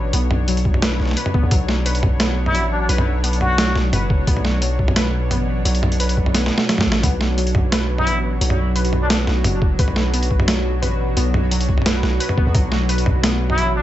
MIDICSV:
0, 0, Header, 1, 7, 480
1, 0, Start_track
1, 0, Key_signature, 2, "minor"
1, 0, Tempo, 344828
1, 187, Time_signature, 4, 2, 24, 8
1, 19243, End_track
2, 0, Start_track
2, 0, Title_t, "Synth texture"
2, 0, Program_c, 0, 99
2, 9784, Note_on_c, 0, 66, 82
2, 19243, Note_off_c, 0, 66, 0
2, 19243, End_track
3, 0, Start_track
3, 0, Title_t, "Muted trumpet"
3, 0, Program_c, 1, 59
3, 3434, Note_on_c, 1, 64, 97
3, 3719, Note_off_c, 1, 64, 0
3, 3788, Note_on_c, 1, 62, 92
3, 3868, Note_off_c, 1, 62, 0
3, 3911, Note_on_c, 1, 62, 78
3, 3985, Note_off_c, 1, 62, 0
3, 4753, Note_on_c, 1, 66, 96
3, 5230, Note_off_c, 1, 66, 0
3, 11110, Note_on_c, 1, 64, 99
3, 11397, Note_off_c, 1, 64, 0
3, 12558, Note_on_c, 1, 62, 89
3, 12628, Note_off_c, 1, 62, 0
3, 12672, Note_on_c, 1, 62, 78
3, 12750, Note_off_c, 1, 62, 0
3, 18793, Note_on_c, 1, 64, 93
3, 19078, Note_off_c, 1, 64, 0
3, 19146, Note_on_c, 1, 62, 88
3, 19227, Note_off_c, 1, 62, 0
3, 19243, End_track
4, 0, Start_track
4, 0, Title_t, "Synth pluck"
4, 0, Program_c, 2, 84
4, 0, Note_on_c, 2, 71, 79
4, 165, Note_off_c, 2, 71, 0
4, 189, Note_on_c, 2, 59, 82
4, 645, Note_off_c, 2, 59, 0
4, 671, Note_on_c, 2, 54, 77
4, 1126, Note_off_c, 2, 54, 0
4, 1147, Note_on_c, 2, 71, 84
4, 1364, Note_off_c, 2, 71, 0
4, 1626, Note_on_c, 2, 71, 79
4, 1843, Note_off_c, 2, 71, 0
4, 1865, Note_on_c, 2, 59, 101
4, 2083, Note_off_c, 2, 59, 0
4, 2110, Note_on_c, 2, 54, 88
4, 2565, Note_off_c, 2, 54, 0
4, 2586, Note_on_c, 2, 71, 79
4, 3043, Note_off_c, 2, 71, 0
4, 3065, Note_on_c, 2, 59, 90
4, 3523, Note_off_c, 2, 59, 0
4, 3542, Note_on_c, 2, 54, 81
4, 4001, Note_off_c, 2, 54, 0
4, 4022, Note_on_c, 2, 71, 89
4, 4481, Note_off_c, 2, 71, 0
4, 4505, Note_on_c, 2, 59, 78
4, 4963, Note_off_c, 2, 59, 0
4, 4988, Note_on_c, 2, 54, 87
4, 5445, Note_off_c, 2, 54, 0
4, 5468, Note_on_c, 2, 71, 77
4, 5924, Note_off_c, 2, 71, 0
4, 5952, Note_on_c, 2, 59, 84
4, 6406, Note_off_c, 2, 59, 0
4, 6428, Note_on_c, 2, 54, 80
4, 6885, Note_off_c, 2, 54, 0
4, 6909, Note_on_c, 2, 71, 85
4, 7365, Note_off_c, 2, 71, 0
4, 7391, Note_on_c, 2, 59, 79
4, 7846, Note_off_c, 2, 59, 0
4, 7872, Note_on_c, 2, 54, 82
4, 8326, Note_off_c, 2, 54, 0
4, 8349, Note_on_c, 2, 71, 78
4, 8805, Note_off_c, 2, 71, 0
4, 8827, Note_on_c, 2, 59, 87
4, 9284, Note_off_c, 2, 59, 0
4, 9311, Note_on_c, 2, 54, 78
4, 9766, Note_off_c, 2, 54, 0
4, 9787, Note_on_c, 2, 59, 84
4, 10244, Note_off_c, 2, 59, 0
4, 10266, Note_on_c, 2, 54, 79
4, 10723, Note_off_c, 2, 54, 0
4, 10749, Note_on_c, 2, 71, 86
4, 11205, Note_off_c, 2, 71, 0
4, 11226, Note_on_c, 2, 59, 80
4, 11683, Note_off_c, 2, 59, 0
4, 11706, Note_on_c, 2, 54, 84
4, 12163, Note_off_c, 2, 54, 0
4, 12188, Note_on_c, 2, 71, 79
4, 12644, Note_off_c, 2, 71, 0
4, 12666, Note_on_c, 2, 59, 88
4, 13123, Note_off_c, 2, 59, 0
4, 13147, Note_on_c, 2, 54, 78
4, 13604, Note_off_c, 2, 54, 0
4, 13631, Note_on_c, 2, 71, 86
4, 14086, Note_off_c, 2, 71, 0
4, 14108, Note_on_c, 2, 59, 80
4, 14564, Note_off_c, 2, 59, 0
4, 14586, Note_on_c, 2, 54, 86
4, 15043, Note_off_c, 2, 54, 0
4, 15063, Note_on_c, 2, 71, 80
4, 15522, Note_off_c, 2, 71, 0
4, 15547, Note_on_c, 2, 59, 87
4, 16004, Note_off_c, 2, 59, 0
4, 16022, Note_on_c, 2, 54, 81
4, 16482, Note_off_c, 2, 54, 0
4, 16505, Note_on_c, 2, 71, 84
4, 16723, Note_off_c, 2, 71, 0
4, 16985, Note_on_c, 2, 71, 81
4, 17203, Note_off_c, 2, 71, 0
4, 17222, Note_on_c, 2, 59, 95
4, 17441, Note_off_c, 2, 59, 0
4, 17461, Note_on_c, 2, 54, 86
4, 17921, Note_off_c, 2, 54, 0
4, 17945, Note_on_c, 2, 71, 79
4, 18403, Note_off_c, 2, 71, 0
4, 18425, Note_on_c, 2, 59, 86
4, 18883, Note_off_c, 2, 59, 0
4, 18906, Note_on_c, 2, 54, 80
4, 19243, Note_off_c, 2, 54, 0
4, 19243, End_track
5, 0, Start_track
5, 0, Title_t, "Synth drone"
5, 0, Program_c, 3, 95
5, 0, Note_on_c, 3, 47, 69
5, 0, Note_on_c, 3, 54, 82
5, 0, Note_on_c, 3, 62, 78
5, 0, Note_on_c, 3, 73, 77
5, 19243, Note_off_c, 3, 47, 0
5, 19243, Note_off_c, 3, 54, 0
5, 19243, Note_off_c, 3, 62, 0
5, 19243, Note_off_c, 3, 73, 0
5, 19243, End_track
6, 0, Start_track
6, 0, Title_t, "808-style bass"
6, 0, Program_c, 4, 38
6, 0, Note_on_c, 4, 33, 94
6, 171, Note_off_c, 4, 33, 0
6, 185, Note_on_c, 4, 35, 97
6, 1371, Note_off_c, 4, 35, 0
6, 1386, Note_on_c, 4, 35, 93
6, 1608, Note_off_c, 4, 35, 0
6, 1992, Note_on_c, 4, 40, 98
6, 2097, Note_off_c, 4, 40, 0
6, 2107, Note_on_c, 4, 35, 92
6, 3544, Note_on_c, 4, 33, 94
6, 3565, Note_off_c, 4, 35, 0
6, 4011, Note_off_c, 4, 33, 0
6, 4022, Note_on_c, 4, 35, 97
6, 5210, Note_off_c, 4, 35, 0
6, 5225, Note_on_c, 4, 35, 100
6, 5447, Note_off_c, 4, 35, 0
6, 5467, Note_on_c, 4, 30, 91
6, 5932, Note_off_c, 4, 30, 0
6, 5949, Note_on_c, 4, 35, 97
6, 7386, Note_on_c, 4, 33, 93
6, 7407, Note_off_c, 4, 35, 0
6, 7852, Note_off_c, 4, 33, 0
6, 7866, Note_on_c, 4, 35, 99
6, 9052, Note_off_c, 4, 35, 0
6, 9549, Note_on_c, 4, 33, 100
6, 9769, Note_off_c, 4, 33, 0
6, 9790, Note_on_c, 4, 35, 95
6, 11227, Note_on_c, 4, 33, 89
6, 11248, Note_off_c, 4, 35, 0
6, 11692, Note_off_c, 4, 33, 0
6, 11706, Note_on_c, 4, 35, 92
6, 12891, Note_off_c, 4, 35, 0
6, 12907, Note_on_c, 4, 35, 98
6, 13128, Note_off_c, 4, 35, 0
6, 13142, Note_on_c, 4, 30, 91
6, 13610, Note_off_c, 4, 30, 0
6, 13628, Note_on_c, 4, 35, 92
6, 15066, Note_on_c, 4, 33, 91
6, 15087, Note_off_c, 4, 35, 0
6, 15531, Note_off_c, 4, 33, 0
6, 15546, Note_on_c, 4, 35, 94
6, 16731, Note_off_c, 4, 35, 0
6, 16744, Note_on_c, 4, 35, 96
6, 16967, Note_off_c, 4, 35, 0
6, 17350, Note_on_c, 4, 40, 100
6, 17456, Note_off_c, 4, 40, 0
6, 17466, Note_on_c, 4, 35, 95
6, 18898, Note_on_c, 4, 33, 93
6, 18919, Note_off_c, 4, 35, 0
6, 19243, Note_off_c, 4, 33, 0
6, 19243, End_track
7, 0, Start_track
7, 0, Title_t, "Drums"
7, 184, Note_on_c, 9, 42, 78
7, 323, Note_off_c, 9, 42, 0
7, 426, Note_on_c, 9, 45, 75
7, 565, Note_off_c, 9, 45, 0
7, 666, Note_on_c, 9, 42, 68
7, 796, Note_off_c, 9, 42, 0
7, 796, Note_on_c, 9, 42, 34
7, 908, Note_on_c, 9, 36, 65
7, 935, Note_off_c, 9, 42, 0
7, 1032, Note_on_c, 9, 45, 53
7, 1047, Note_off_c, 9, 36, 0
7, 1147, Note_on_c, 9, 38, 127
7, 1147, Note_on_c, 9, 42, 81
7, 1171, Note_off_c, 9, 45, 0
7, 1286, Note_off_c, 9, 38, 0
7, 1286, Note_off_c, 9, 42, 0
7, 1389, Note_on_c, 9, 38, 29
7, 1468, Note_off_c, 9, 38, 0
7, 1468, Note_on_c, 9, 38, 40
7, 1549, Note_off_c, 9, 38, 0
7, 1549, Note_on_c, 9, 38, 52
7, 1625, Note_on_c, 9, 42, 65
7, 1688, Note_off_c, 9, 38, 0
7, 1751, Note_on_c, 9, 45, 73
7, 1765, Note_off_c, 9, 42, 0
7, 1869, Note_on_c, 9, 36, 117
7, 1890, Note_off_c, 9, 45, 0
7, 2008, Note_off_c, 9, 36, 0
7, 2105, Note_on_c, 9, 42, 76
7, 2105, Note_on_c, 9, 45, 49
7, 2109, Note_on_c, 9, 36, 120
7, 2244, Note_off_c, 9, 42, 0
7, 2244, Note_off_c, 9, 45, 0
7, 2248, Note_off_c, 9, 36, 0
7, 2346, Note_on_c, 9, 38, 64
7, 2485, Note_off_c, 9, 38, 0
7, 2586, Note_on_c, 9, 42, 65
7, 2712, Note_off_c, 9, 42, 0
7, 2712, Note_on_c, 9, 42, 35
7, 2824, Note_on_c, 9, 45, 77
7, 2828, Note_on_c, 9, 36, 63
7, 2851, Note_off_c, 9, 42, 0
7, 2963, Note_off_c, 9, 45, 0
7, 2967, Note_off_c, 9, 36, 0
7, 3061, Note_on_c, 9, 38, 125
7, 3061, Note_on_c, 9, 42, 81
7, 3200, Note_off_c, 9, 38, 0
7, 3200, Note_off_c, 9, 42, 0
7, 3428, Note_on_c, 9, 45, 53
7, 3545, Note_on_c, 9, 42, 61
7, 3567, Note_off_c, 9, 45, 0
7, 3684, Note_off_c, 9, 42, 0
7, 4025, Note_on_c, 9, 42, 74
7, 4153, Note_on_c, 9, 45, 76
7, 4164, Note_off_c, 9, 42, 0
7, 4292, Note_off_c, 9, 45, 0
7, 4508, Note_on_c, 9, 42, 65
7, 4636, Note_off_c, 9, 42, 0
7, 4636, Note_on_c, 9, 42, 34
7, 4745, Note_on_c, 9, 45, 52
7, 4776, Note_off_c, 9, 42, 0
7, 4884, Note_off_c, 9, 45, 0
7, 4988, Note_on_c, 9, 38, 121
7, 4988, Note_on_c, 9, 42, 80
7, 5127, Note_off_c, 9, 38, 0
7, 5127, Note_off_c, 9, 42, 0
7, 5227, Note_on_c, 9, 38, 59
7, 5366, Note_off_c, 9, 38, 0
7, 5470, Note_on_c, 9, 42, 62
7, 5470, Note_on_c, 9, 45, 79
7, 5609, Note_off_c, 9, 42, 0
7, 5609, Note_off_c, 9, 45, 0
7, 5708, Note_on_c, 9, 36, 108
7, 5848, Note_off_c, 9, 36, 0
7, 5948, Note_on_c, 9, 36, 115
7, 5950, Note_on_c, 9, 42, 75
7, 6077, Note_on_c, 9, 45, 51
7, 6087, Note_off_c, 9, 36, 0
7, 6089, Note_off_c, 9, 42, 0
7, 6190, Note_on_c, 9, 38, 58
7, 6217, Note_off_c, 9, 45, 0
7, 6329, Note_off_c, 9, 38, 0
7, 6429, Note_on_c, 9, 42, 69
7, 6568, Note_off_c, 9, 42, 0
7, 6669, Note_on_c, 9, 36, 60
7, 6794, Note_on_c, 9, 45, 83
7, 6808, Note_off_c, 9, 36, 0
7, 6906, Note_on_c, 9, 38, 119
7, 6906, Note_on_c, 9, 42, 83
7, 6933, Note_off_c, 9, 45, 0
7, 7046, Note_off_c, 9, 38, 0
7, 7046, Note_off_c, 9, 42, 0
7, 7390, Note_on_c, 9, 42, 66
7, 7390, Note_on_c, 9, 45, 54
7, 7529, Note_off_c, 9, 42, 0
7, 7529, Note_off_c, 9, 45, 0
7, 7871, Note_on_c, 9, 42, 80
7, 7999, Note_off_c, 9, 42, 0
7, 7999, Note_on_c, 9, 42, 35
7, 8113, Note_on_c, 9, 45, 85
7, 8138, Note_off_c, 9, 42, 0
7, 8238, Note_on_c, 9, 42, 37
7, 8252, Note_off_c, 9, 45, 0
7, 8351, Note_off_c, 9, 42, 0
7, 8351, Note_on_c, 9, 42, 68
7, 8480, Note_off_c, 9, 42, 0
7, 8480, Note_on_c, 9, 42, 37
7, 8591, Note_on_c, 9, 36, 60
7, 8619, Note_off_c, 9, 42, 0
7, 8718, Note_on_c, 9, 45, 56
7, 8730, Note_off_c, 9, 36, 0
7, 8833, Note_on_c, 9, 38, 70
7, 8833, Note_on_c, 9, 42, 80
7, 8857, Note_off_c, 9, 45, 0
7, 8972, Note_off_c, 9, 38, 0
7, 8972, Note_off_c, 9, 42, 0
7, 8995, Note_on_c, 9, 38, 78
7, 9135, Note_off_c, 9, 38, 0
7, 9155, Note_on_c, 9, 38, 84
7, 9294, Note_off_c, 9, 38, 0
7, 9314, Note_on_c, 9, 38, 87
7, 9314, Note_on_c, 9, 42, 69
7, 9438, Note_on_c, 9, 45, 79
7, 9453, Note_off_c, 9, 38, 0
7, 9453, Note_off_c, 9, 42, 0
7, 9475, Note_on_c, 9, 38, 97
7, 9577, Note_off_c, 9, 45, 0
7, 9614, Note_off_c, 9, 38, 0
7, 9630, Note_on_c, 9, 38, 108
7, 9769, Note_off_c, 9, 38, 0
7, 9791, Note_on_c, 9, 36, 118
7, 9792, Note_on_c, 9, 42, 84
7, 9792, Note_on_c, 9, 45, 55
7, 9930, Note_off_c, 9, 36, 0
7, 9931, Note_off_c, 9, 42, 0
7, 9931, Note_off_c, 9, 45, 0
7, 10032, Note_on_c, 9, 38, 62
7, 10171, Note_off_c, 9, 38, 0
7, 10271, Note_on_c, 9, 42, 74
7, 10394, Note_off_c, 9, 42, 0
7, 10394, Note_on_c, 9, 42, 39
7, 10506, Note_on_c, 9, 45, 81
7, 10510, Note_on_c, 9, 36, 60
7, 10534, Note_off_c, 9, 42, 0
7, 10645, Note_off_c, 9, 45, 0
7, 10649, Note_off_c, 9, 36, 0
7, 10749, Note_on_c, 9, 38, 123
7, 10749, Note_on_c, 9, 42, 86
7, 10889, Note_off_c, 9, 38, 0
7, 10889, Note_off_c, 9, 42, 0
7, 11114, Note_on_c, 9, 45, 56
7, 11231, Note_on_c, 9, 42, 69
7, 11253, Note_off_c, 9, 45, 0
7, 11370, Note_off_c, 9, 42, 0
7, 11711, Note_on_c, 9, 42, 81
7, 11834, Note_on_c, 9, 45, 76
7, 11850, Note_off_c, 9, 42, 0
7, 11973, Note_off_c, 9, 45, 0
7, 12189, Note_on_c, 9, 42, 72
7, 12314, Note_off_c, 9, 42, 0
7, 12314, Note_on_c, 9, 42, 38
7, 12427, Note_on_c, 9, 45, 51
7, 12453, Note_off_c, 9, 42, 0
7, 12566, Note_off_c, 9, 45, 0
7, 12668, Note_on_c, 9, 38, 127
7, 12668, Note_on_c, 9, 42, 87
7, 12808, Note_off_c, 9, 38, 0
7, 12808, Note_off_c, 9, 42, 0
7, 12909, Note_on_c, 9, 38, 63
7, 13048, Note_off_c, 9, 38, 0
7, 13146, Note_on_c, 9, 42, 70
7, 13146, Note_on_c, 9, 45, 81
7, 13285, Note_off_c, 9, 42, 0
7, 13285, Note_off_c, 9, 45, 0
7, 13388, Note_on_c, 9, 36, 114
7, 13527, Note_off_c, 9, 36, 0
7, 13627, Note_on_c, 9, 42, 81
7, 13628, Note_on_c, 9, 36, 122
7, 13749, Note_on_c, 9, 45, 49
7, 13766, Note_off_c, 9, 42, 0
7, 13767, Note_off_c, 9, 36, 0
7, 13866, Note_on_c, 9, 38, 65
7, 13889, Note_off_c, 9, 45, 0
7, 14005, Note_off_c, 9, 38, 0
7, 14109, Note_on_c, 9, 42, 68
7, 14234, Note_off_c, 9, 42, 0
7, 14234, Note_on_c, 9, 42, 37
7, 14347, Note_on_c, 9, 36, 67
7, 14373, Note_off_c, 9, 42, 0
7, 14471, Note_on_c, 9, 45, 82
7, 14486, Note_off_c, 9, 36, 0
7, 14587, Note_on_c, 9, 38, 127
7, 14587, Note_on_c, 9, 42, 81
7, 14610, Note_off_c, 9, 45, 0
7, 14726, Note_off_c, 9, 38, 0
7, 14726, Note_off_c, 9, 42, 0
7, 15069, Note_on_c, 9, 42, 71
7, 15069, Note_on_c, 9, 45, 52
7, 15209, Note_off_c, 9, 42, 0
7, 15209, Note_off_c, 9, 45, 0
7, 15546, Note_on_c, 9, 42, 78
7, 15685, Note_off_c, 9, 42, 0
7, 15787, Note_on_c, 9, 45, 77
7, 15927, Note_off_c, 9, 45, 0
7, 16028, Note_on_c, 9, 42, 67
7, 16154, Note_off_c, 9, 42, 0
7, 16154, Note_on_c, 9, 42, 36
7, 16267, Note_on_c, 9, 36, 66
7, 16294, Note_off_c, 9, 42, 0
7, 16392, Note_on_c, 9, 45, 49
7, 16406, Note_off_c, 9, 36, 0
7, 16449, Note_off_c, 9, 45, 0
7, 16449, Note_on_c, 9, 45, 39
7, 16508, Note_off_c, 9, 45, 0
7, 16508, Note_on_c, 9, 38, 125
7, 16508, Note_on_c, 9, 42, 83
7, 16508, Note_on_c, 9, 45, 33
7, 16569, Note_off_c, 9, 45, 0
7, 16569, Note_on_c, 9, 45, 28
7, 16647, Note_off_c, 9, 38, 0
7, 16647, Note_off_c, 9, 42, 0
7, 16708, Note_off_c, 9, 45, 0
7, 16749, Note_on_c, 9, 38, 65
7, 16888, Note_off_c, 9, 38, 0
7, 16988, Note_on_c, 9, 42, 68
7, 17110, Note_on_c, 9, 45, 71
7, 17127, Note_off_c, 9, 42, 0
7, 17228, Note_on_c, 9, 36, 116
7, 17249, Note_off_c, 9, 45, 0
7, 17367, Note_off_c, 9, 36, 0
7, 17464, Note_on_c, 9, 42, 72
7, 17464, Note_on_c, 9, 45, 52
7, 17467, Note_on_c, 9, 36, 127
7, 17603, Note_off_c, 9, 42, 0
7, 17603, Note_off_c, 9, 45, 0
7, 17607, Note_off_c, 9, 36, 0
7, 17702, Note_on_c, 9, 38, 62
7, 17841, Note_off_c, 9, 38, 0
7, 17944, Note_on_c, 9, 42, 66
7, 18070, Note_off_c, 9, 42, 0
7, 18070, Note_on_c, 9, 42, 35
7, 18181, Note_on_c, 9, 45, 78
7, 18186, Note_on_c, 9, 36, 60
7, 18209, Note_off_c, 9, 42, 0
7, 18321, Note_off_c, 9, 45, 0
7, 18326, Note_off_c, 9, 36, 0
7, 18423, Note_on_c, 9, 38, 125
7, 18423, Note_on_c, 9, 42, 79
7, 18563, Note_off_c, 9, 38, 0
7, 18563, Note_off_c, 9, 42, 0
7, 18788, Note_on_c, 9, 45, 55
7, 18900, Note_on_c, 9, 42, 62
7, 18927, Note_off_c, 9, 45, 0
7, 19039, Note_off_c, 9, 42, 0
7, 19243, End_track
0, 0, End_of_file